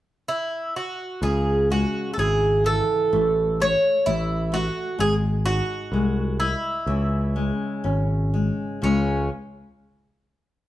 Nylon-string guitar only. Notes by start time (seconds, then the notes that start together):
1.22 C#3
1.70 G#3
2.18 E4
2.64 E3
3.13 A3
3.60 A3
4.06 A3
4.52 A3
4.99 G#3
5.46 D#4
5.93 G#3
6.40 D#5
6.87 C#3
7.36 G#3
7.84 C#4
8.34 G#3
8.82 C#3 G#3